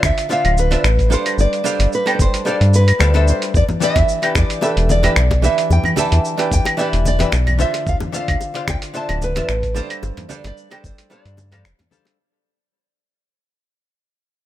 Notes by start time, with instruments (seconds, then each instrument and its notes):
Already playing: hollow-body jazz guitar D3 D4 F4 C5 F5
0.03 analog synth bass D2, nylon-string guitar E5, finger snap, kick, shaker
0.18 closed hi-hat, shaker
0.29 hollow-body jazz guitar D3 D4 F4 C5 E5, nylon-string guitar F5, shaker
0.44 analog synth bass D1, closed hi-hat, claves, shaker
0.57 nylon-string guitar B4, shaker
0.71 hollow-body jazz guitar D3 D4 F4 C5 E5, closed hi-hat, shaker
0.84 analog synth bass A1, finger snap, shaker
0.99 kick, closed hi-hat, shaker
1.10 hollow-body jazz guitar G3 D4 A4 C5 F5, nylon-string guitar C5, shaker
1.26 closed hi-hat, claves, shaker
1.38 analog synth bass G1, nylon-string guitar D5, shaker
1.53 closed hi-hat, shaker
1.64 hollow-body jazz guitar G3 D4 A4 C5 F5, shaker
1.79 analog synth bass G1, closed hi-hat, shaker
1.93 nylon-string guitar B4, shaker
2.06 hollow-body jazz guitar G3 D4 A4 C5 G5, closed hi-hat, claves, shaker
2.15 nylon-string guitar D5
2.19 analog synth bass G1, nylon-string guitar C5, kick, shaker
2.34 closed hi-hat, shaker
2.45 hollow-body jazz guitar G3 D4 A4 C5 F5, nylon-string guitar D5, shaker
2.61 analog synth bass G2, closed hi-hat, shaker
2.74 nylon-string guitar B4, shaker
2.88 closed hi-hat, claves, shaker
2.99 analog synth bass D2, hollow-body jazz guitar G3 D4 A4 C5 F5, finger snap, shaker
3.14 hollow-body jazz guitar G3 D4 A4 C5 E5, closed hi-hat, shaker
3.28 nylon-string guitar C5, shaker
3.42 closed hi-hat, shaker
3.54 analog synth bass E2, nylon-string guitar D5, kick, shaker
3.69 high bongo, low conga, shaker
3.80 hollow-body jazz guitar E3 D4 G4 B4 E5, nylon-string guitar E5, shaker
3.96 analog synth bass E2, kick, closed hi-hat, high bongo, shaker
4.09 shaker
4.22 hollow-body jazz guitar E3 D4 G4 B4 G5, closed hi-hat, claves, shaker
4.35 analog synth bass E2, nylon-string guitar D5, finger snap, kick, high bongo, shaker
4.50 closed hi-hat, shaker
4.61 hollow-body jazz guitar E3 D4 G4 B4 E5, nylon-string guitar A4, high bongo, shaker
4.77 analog synth bass E1, closed hi-hat, shaker
4.89 nylon-string guitar D5, high conga, shaker
5.03 hollow-body jazz guitar E3 D4 G4 B4 E5, closed hi-hat, high bongo, low conga, claves, shaker
5.16 analog synth bass B1, finger snap, shaker
5.31 kick, closed hi-hat, high bongo, shaker
5.42 hollow-body jazz guitar E3 D4 G4 B4 E5, nylon-string guitar E5, high conga, shaker
5.58 closed hi-hat, shaker
5.70 analog synth bass E2, nylon-string guitar G5, high bongo, shaker
5.84 low conga, claves, shaker
5.96 hollow-body jazz guitar E3 D4 G4 B4 E5, nylon-string guitar A5, high bongo, high conga, shaker
6.12 analog synth bass E2, closed hi-hat, shaker
6.25 shaker
6.37 hollow-body jazz guitar E3 D4 G4 B4 G5, closed hi-hat, high bongo, shaker
6.51 analog synth bass E2, nylon-string guitar G5, kick, shaker
6.65 closed hi-hat, high bongo, claves, shaker
6.77 hollow-body jazz guitar E3 D4 G4 B4 E5, nylon-string guitar D5, shaker
6.93 analog synth bass E1, closed hi-hat, shaker
7.05 nylon-string guitar D5, high bongo, high conga, shaker
7.19 hollow-body jazz guitar E3 D4 G4 B4 E5, closed hi-hat, low conga, shaker
7.32 analog synth bass B1, finger snap, high bongo, shaker
7.47 closed hi-hat, low conga, claves, shaker
7.59 hollow-body jazz guitar D3 D4 F4 C5 E5, nylon-string guitar E5, high conga, shaker
7.74 closed hi-hat, high bongo, shaker
7.87 analog synth bass D2, nylon-string guitar F5, kick, shaker
8.00 high bongo, low conga, shaker
8.12 hollow-body jazz guitar D3 D4 F4 C5 F5, nylon-string guitar F5, shaker
8.28 analog synth bass D2, kick, closed hi-hat, claves, shaker
8.41 high bongo, shaker
8.54 hollow-body jazz guitar D3 D4 F4 C5 F5, closed hi-hat, shaker
8.68 analog synth bass D2, nylon-string guitar G5, finger snap, kick, high bongo, shaker
8.82 closed hi-hat, shaker
8.94 hollow-body jazz guitar D3 D4 F4 C5 E5, nylon-string guitar A5, shaker
9.09 analog synth bass D1, closed hi-hat, high bongo, claves, shaker
9.22 nylon-string guitar B4, high conga, shaker
9.35 hollow-body jazz guitar D3 D4 F4 C5 E5, closed hi-hat, high bongo, low conga, shaker
9.49 analog synth bass A1, finger snap, shaker
9.63 kick, closed hi-hat, shaker
9.75 hollow-body jazz guitar G3 D4 A4 C5 F5, nylon-string guitar C5, high bongo, high conga, shaker
9.90 closed hi-hat, claves, shaker
10.03 analog synth bass G1, high bongo, shaker
10.17 closed hi-hat, low conga, shaker
10.29 hollow-body jazz guitar G3 D4 A4 C5 F5, high conga, shaker
10.44 analog synth bass G1, nylon-string guitar D5, closed hi-hat, high bongo, shaker
10.57 shaker
10.70 hollow-body jazz guitar G3 D4 A4 C5 G5, closed hi-hat, high bongo, claves, shaker
10.84 analog synth bass G1, nylon-string guitar C5, kick, shaker
10.98 closed hi-hat, shaker
11.10 hollow-body jazz guitar G3 D4 A4 C5 F5, nylon-string guitar D5, high bongo, shaker
11.25 analog synth bass G2, closed hi-hat, shaker
11.37 high bongo, high conga, shaker
11.52 hollow-body jazz guitar G3 D4 A4 C5 F5, closed hi-hat, low conga, claves, shaker
11.65 analog synth bass F1, nylon-string guitar C5, finger snap, shaker
11.79 closed hi-hat, high bongo, low conga, shaker
11.91 hollow-body jazz guitar G3 D4 A4 C5 F5, high conga, shaker
12.05 closed hi-hat, high bongo, shaker